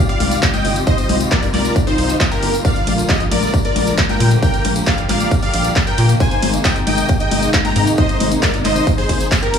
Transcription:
Already playing: C3 D#3 G3 F4 G4
0.09 D5 F5, closed hi-hat
0.20 C2, open hi-hat, high conga
0.31 closed hi-hat, tambourine
0.43 kick, clap, closed hi-hat, tambourine
0.53 D#5 G5, closed hi-hat, tambourine, high conga
0.65 G1, open hi-hat
0.76 closed hi-hat, tambourine
0.87 C5 D#5, kick, closed hi-hat, tambourine
0.98 closed hi-hat, tambourine
1.09 C2, open hi-hat, high conga
1.20 closed hi-hat, tambourine
1.31 A#4 D5, kick, clap, closed hi-hat, tambourine
1.43 C2, closed hi-hat, tambourine
1.54 C2 A#4 D5, clap, open hi-hat, high conga
1.65 closed hi-hat, tambourine
1.76 kick, closed hi-hat, tambourine
1.87 D#4 C5, open hi-hat, tambourine
1.98 C2, open hi-hat
2.09 closed hi-hat, tambourine
2.20 kick, clap, closed hi-hat, tambourine
2.31 G4 A#4, closed hi-hat, tambourine
2.43 G1, open hi-hat
2.54 closed hi-hat, tambourine
2.65 D3 F3 A#3 D5 F5, kick, closed hi-hat, tambourine
2.76 closed hi-hat, tambourine
2.87 A#1, open hi-hat, ride, high conga
2.98 closed hi-hat, tambourine
3.09 G4 D#5, kick, clap, closed hi-hat, tambourine
3.20 A#1, closed hi-hat, tambourine
3.31 A#1 A#4 D5, open hi-hat, ride, high conga
3.43 closed hi-hat, tambourine
3.54 kick, closed hi-hat, tambourine
3.65 A#4 D5, closed hi-hat
3.76 A#1, open hi-hat, ride, high conga
3.87 closed hi-hat, tambourine
3.98 kick, clap, closed hi-hat, tambourine
4.09 A#4 G5, closed hi-hat, tambourine, high conga
4.20 A#2, open hi-hat, ride
4.31 closed hi-hat, tambourine
4.42 G4 A#4 G5, kick, closed hi-hat, tambourine
4.54 closed hi-hat, tambourine
4.65 A#1, open hi-hat, ride, high conga
4.76 closed hi-hat, tambourine
4.86 D5 F5, kick, clap, closed hi-hat, tambourine
4.98 A#1, closed hi-hat, tambourine
5.09 A#1 D5 F5, clap, open hi-hat, ride, high conga
5.20 closed hi-hat, tambourine
5.31 kick, closed hi-hat, tambourine
5.42 D5 F5, open hi-hat, tambourine
5.54 A#1, open hi-hat, ride
5.64 closed hi-hat, tambourine
5.76 kick, clap, closed hi-hat, tambourine
5.87 A#4 G5, closed hi-hat, tambourine
5.98 A#2, open hi-hat, ride
6.09 closed hi-hat, tambourine
6.20 C3 D#3 G#3 D#4 C5 G#5, kick, closed hi-hat, tambourine
6.31 closed hi-hat, tambourine
6.43 G#1, open hi-hat, ride, high conga
6.53 closed hi-hat, tambourine
6.64 D#5 G5, kick, clap, closed hi-hat, tambourine
6.76 G#1, closed hi-hat, tambourine
6.87 G#1 D#5 G5, open hi-hat, ride, high conga
6.97 closed hi-hat, tambourine
7.09 kick, closed hi-hat, tambourine
7.20 D#5 G5, closed hi-hat, tambourine
7.31 G#1, open hi-hat, ride, high conga
7.43 closed hi-hat, tambourine
7.54 kick, clap, closed hi-hat, tambourine
7.65 G5 A#5, closed hi-hat, tambourine, high conga
7.76 G#2, open hi-hat, ride
7.87 closed hi-hat, tambourine
7.98 C5 D#5, kick, closed hi-hat, tambourine
8.09 closed hi-hat, tambourine
8.20 G#1, open hi-hat, ride, high conga
8.31 closed hi-hat, tambourine
8.43 A#4 D5, kick, clap, closed hi-hat, tambourine
8.54 G#1, closed hi-hat, tambourine
8.65 G#1 C5 D#5, clap, open hi-hat, ride, high conga
8.76 closed hi-hat, tambourine
8.87 kick, closed hi-hat, tambourine
8.98 G#4 C5, open hi-hat, tambourine
9.09 G#1, kick, open hi-hat, ride
9.20 closed hi-hat, tambourine
9.31 kick, clap, closed hi-hat, tambourine
9.42 G4 A#4, closed hi-hat, tambourine
9.54 G#1, open hi-hat, ride

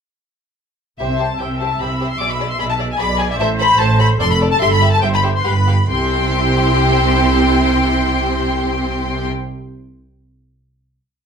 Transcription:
0.98 C2 C3 G4 C5 E5
1.19 G4 C5 A5
1.39 C2 C3 G4 C5 E5 G5
1.59 G4 C5 A5
1.80 C2 C3 G4 C5 B5
2.01 G4 C5
2.10 C6
2.19 B1 B2 G#4 D5 D6
2.30 B5
2.40 G#4 D5
2.50 C6
2.59 B1 B2 G#4 D5 B5
2.70 A5
2.78 G#4 D5
2.90 G#5
2.99 B1 B2 G#4 D5 B5
3.18 G#4 D5 G#5
3.30 E5
3.38 A1 A2 A4 C5 E5
3.59 A4 C5 B5
3.78 A1 A2 A4 C5 A5
3.99 A4 C5 B5
4.19 F1 F2 A4 D5 C6
4.31 B5
4.40 A4 D5
4.51 A5
4.60 G1 G2 G4 E5 C6
4.73 B5
4.81 G4 E5
4.92 A5
5.01 G1 G2 G4 C5 E5 G5
5.14 B5
5.23 G4 E5
5.35 C6
5.44 G1 G2 G4 B4 F5 B5
5.66 G4 F5
5.89 C2 C3 C4 E4 G4 G5 C6

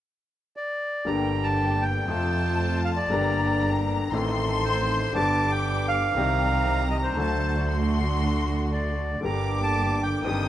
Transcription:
0.56 D5
1.05 G1 G2 D3 G3 A#3 D4 G4 G5 A#5
1.43 A5
1.82 G5
2.07 F2 C3 F3 A3 C4 F4 A5
2.11 F4
2.84 F5
2.96 D5
3.10 G1 G2 D3 G3 A#3 D4 G4 A#5
4.12 A1 A2 D#3 A3 C4 D#4 A4 C6
4.64 C5
5.13 G1 G2 D3 G3 B3 D4 G4 A5 D6
5.17 G4
5.51 G5
5.88 F5
6.15 C2 C3 D#3 G3 C4 D#4 G4 A#5
6.19 G4
6.91 D#5
7.03 C5
7.17 D2 D3 F#3 A3 D4 F#4 A5
7.21 F#4
7.70 C6
8.73 D5
9.21 G1 G2 D3 G3 A#3 D4 G4 A#5 D6
9.25 G4
9.63 A5
10.03 G5
10.22 G1 G2 D#3 G3 C4 D#4 G4 D#6
10.27 G4

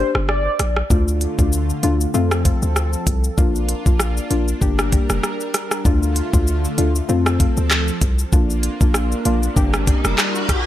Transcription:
Already playing: A#3 D4 G4 C5
0.15 G1, cross-stick
0.28 D5, cross-stick
0.59 A#1, cross-stick, closed hi-hat
0.77 cross-stick
0.90 D2 D3 A3 D4 F4, kick, shaker
1.08 shaker
1.21 closed hi-hat, shaker
1.38 D2 A3 D4 F4, kick, shaker
1.52 shaker
1.70 shaker
1.83 D2 A3 D4 F4, closed hi-hat, shaker
2.01 shaker
2.14 F2 F3 A3 C4 F4 A4, shaker
2.31 cross-stick, shaker
2.45 A3 C4 F4, kick, closed hi-hat, shaker
2.62 D2, shaker
2.76 cross-stick, shaker
2.93 shaker
3.07 C2, kick, closed hi-hat, shaker
3.24 shaker
3.37 A#1 A#3 D4 F4, kick, shaker
3.56 shaker
3.69 closed hi-hat, shaker
3.86 A#1 A#3 D4 F4, kick, shaker
4.00 cross-stick, shaker
4.17 shaker
4.30 A#1 A#3 D4 F4, closed hi-hat, shaker
4.48 shaker
4.61 G1 G3 A#3 D4 G4 A#4, kick, shaker
4.79 cross-stick, shaker
4.92 A#3 D4 G4, kick, closed hi-hat, shaker
5.10 F1, cross-stick, shaker
5.23 cross-stick, shaker
5.40 shaker
5.54 cross-stick, closed hi-hat, shaker
5.71 cross-stick, shaker
5.85 D2 D3 A3 D4 F4, kick, shaker
6.03 shaker
6.16 closed hi-hat, shaker
6.33 D2 A3 D4 F4, kick, shaker
6.47 shaker
6.65 shaker
6.78 D2 A3 D4 F4, closed hi-hat, shaker
6.95 shaker
7.09 F2 F3 A3 C4 F4 A4, shaker
7.26 cross-stick, shaker
7.40 A3 C4 F4, kick, closed hi-hat, shaker
7.57 D2, shaker
7.71 cross-stick, clap, shaker
7.88 shaker
8.01 C2, kick, closed hi-hat, shaker
8.19 shaker
8.32 A#1 A#3 D4 F4, kick, riser, shaker
8.50 shaker
8.63 closed hi-hat, shaker
8.81 A#1 A#3 D4 F4, kick, shaker
8.94 cross-stick, shaker
9.12 shaker
9.25 A#1 A#3 D4 F4, closed hi-hat, shaker
9.43 shaker
9.56 G1 G3 A#3 D4 G4 A#4, kick, shaker
9.74 cross-stick, shaker
9.87 A#3 D4 G4, kick, closed hi-hat, shaker
10.05 F1, cross-stick, shaker
10.18 cross-stick, clap, shaker
10.35 shaker
10.49 kick, cross-stick, closed hi-hat, shaker

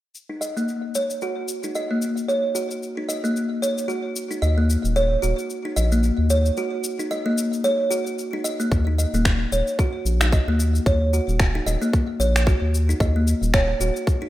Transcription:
0.15 cabasa
0.29 D#4
0.41 D#5, cabasa
0.57 A#3, cabasa
0.68 cabasa
0.95 C#5, cabasa
1.10 cabasa
1.21 F#4, cabasa
1.48 cabasa
1.63 D#4, cabasa
1.75 D#5, cabasa
1.91 A#3
2.02 cabasa
2.17 cabasa
2.28 C#5, cabasa
2.55 F#4, cabasa
2.71 cabasa
2.83 cabasa
2.97 D#4
3.09 D#5, cabasa
3.24 A#3, cabasa
3.36 cabasa
3.62 C#5, cabasa
3.78 cabasa
3.88 F#4, cabasa
4.16 cabasa
4.31 D#4, cabasa
4.42 D#2 D#5, cabasa
4.58 A#3
4.70 cabasa
4.84 D#1, cabasa
4.96 C#5, cabasa
5.22 D#1 F#4, cabasa
5.39 cabasa
5.50 cabasa
5.65 D#4
5.76 A#1 D#5, cabasa
5.92 A#3, cabasa
6.03 cabasa
6.18 D#2
6.30 C#5, cabasa
6.46 cabasa
6.57 F#4, cabasa
6.84 cabasa
6.99 D#4, cabasa
7.11 D#5, cabasa
7.26 A#3
7.38 cabasa
7.53 cabasa
7.64 C#5, cabasa
7.91 F#4, cabasa
8.07 cabasa
8.19 cabasa
8.33 D#4
8.44 D#5, cabasa
8.60 A#3, cabasa
8.72 D#2, kick, cabasa
8.87 D#4
8.98 D#5, cabasa
9.14 D#1 A#3, cabasa
9.25 finger snap, kick, cabasa
9.52 D#1 C#5, cabasa
9.67 cabasa
9.79 F#4, kick, cabasa
10.05 A#1, cabasa
10.21 D#4, finger snap, cabasa
10.33 D#5, kick, cabasa
10.48 D#2 A#3
10.60 cabasa
10.75 cabasa
10.86 D#2 C#5, kick, cabasa
11.13 F#4, cabasa
11.28 D#1, cabasa
11.40 finger snap, kick, cabasa
11.55 D#4
11.66 D#1 D#5, cabasa
11.82 A#3, cabasa
11.93 kick, cabasa
12.20 A#1 C#5, cabasa
12.36 finger snap, cabasa
12.47 F#4, kick, cabasa
12.62 D#2
12.74 cabasa
12.89 D#4, cabasa
13.00 D#2 D#5, kick, cabasa
13.16 A#3
13.27 cabasa
13.42 D#1, cabasa
13.54 C#5, finger snap, kick, cabasa
13.80 D#1 F#4, cabasa
13.96 cabasa
14.07 kick, cabasa
14.22 D#4

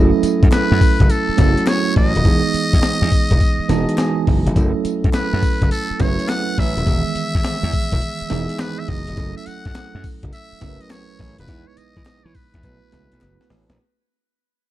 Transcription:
Already playing: F#3 A3 C#4 E4
0.02 A4
0.23 muted slap bass stroke, closed hi-hat, tambourine
0.43 F#2, kick, closed hi-hat
0.52 B4, muted slap bass stroke, snare, clap, closed hi-hat, tambourine
0.72 F#2
0.81 kick, open hi-hat, tambourine
1.00 F#1, kick, closed hi-hat
1.10 A4, closed hi-hat, tambourine
1.29 muted slap bass stroke
1.37 F#1 F#3 A3 C#4 E4 F#4, kick, snare, closed hi-hat, tambourine
1.57 closed hi-hat
1.67 C#5, snare, clap, closed hi-hat, tambourine
1.96 A1 D#5, kick, open hi-hat
2.15 D#1, closed hi-hat
2.25 E1 E3 G#3 B3 D#4 G#4, kick, closed hi-hat, tambourine
2.54 muted slap bass stroke, closed hi-hat, tambourine
2.73 E2, kick, closed hi-hat
2.83 muted slap bass stroke, snare, clap, closed hi-hat, tambourine
3.02 E2
3.12 kick, open hi-hat, tambourine
3.31 E1, kick, closed hi-hat
3.40 kick, closed hi-hat, tambourine
3.59 muted slap bass stroke
3.69 E1 E3 G#3 B3 D#4 F#4 A5, snare, closed hi-hat, tambourine
3.77 G#4
3.89 closed hi-hat
3.98 G#5, snare, clap, closed hi-hat, tambourine
4.27 F#1, kick, open hi-hat
4.46 F1, closed hi-hat
4.56 F#1 F#3 A3 C#4 E4 A4, kick, closed hi-hat, tambourine
4.85 muted slap bass stroke, closed hi-hat, tambourine
5.04 F#2, kick, closed hi-hat
5.13 B4, muted slap bass stroke, snare, clap, closed hi-hat, tambourine
5.33 F#2
5.42 kick, open hi-hat, tambourine
5.62 F#1, kick, closed hi-hat
5.71 A4, closed hi-hat, tambourine
5.91 muted slap bass stroke
5.99 F#1 F#3 A3 C#4 E4 B4 C#5, kick, snare, closed hi-hat, tambourine
6.19 closed hi-hat
6.29 F#5, snare, clap, closed hi-hat, tambourine
6.58 A1 E5, kick, open hi-hat
6.77 D#1, closed hi-hat
6.85 E1 D#3 E3 G#3 B3 G#4, kick, closed hi-hat, tambourine
7.15 muted slap bass stroke, closed hi-hat, tambourine
7.35 E2, kick, closed hi-hat
7.44 muted slap bass stroke, snare, clap, closed hi-hat, tambourine
7.63 E2
7.73 kick, open hi-hat, tambourine
7.92 E1, kick, closed hi-hat
8.01 closed hi-hat, tambourine
8.22 muted slap bass stroke
8.30 E1 E3 G#3 B3 D#4 G#4, snare, closed hi-hat, tambourine
8.49 closed hi-hat
8.59 B4, snare, clap, closed hi-hat, tambourine
8.79 E5
8.88 F#1 D#5, kick, open hi-hat
9.07 F1, closed hi-hat
9.17 F#1 F#3 A3 C#4 E4 A4, kick, closed hi-hat, tambourine
9.37 E5
9.46 F#5, muted slap bass stroke, closed hi-hat, tambourine
9.65 F#2, kick, closed hi-hat
9.75 muted slap bass stroke, snare, clap, closed hi-hat, tambourine
9.95 F#2
10.04 kick, open hi-hat, tambourine
10.23 F#1, kick, closed hi-hat
10.33 E5, closed hi-hat, tambourine
10.53 muted slap bass stroke
10.61 F#1 F#3 A3 C#4 E4 A#4, kick, snare, closed hi-hat, tambourine
10.69 B4
10.80 D#5, closed hi-hat
10.90 C#5, snare, clap, closed hi-hat, tambourine
11.19 A1, kick, open hi-hat
11.38 D#1 B4, closed hi-hat
11.48 E2 G#3 B3 D#4 E4 B4, kick, closed hi-hat, tambourine
11.68 C#5
11.77 D#5, muted slap bass stroke, closed hi-hat, tambourine
11.97 E3, kick, closed hi-hat
12.06 muted slap bass stroke, snare, clap, closed hi-hat, tambourine
12.26 E3 C#5
12.35 B4, kick, open hi-hat, tambourine
12.54 E2, kick, closed hi-hat
12.63 B1 A3 B3 E4 F#4 B4, kick, closed hi-hat, tambourine
12.92 C#2 A3 B3 E4 F#4 B4, snare, closed hi-hat, tambourine
13.12 B1, closed hi-hat
13.21 F#1, snare, clap, closed hi-hat
13.41 snare
13.50 A1, snare, open hi-hat
13.69 A#1, snare, closed hi-hat

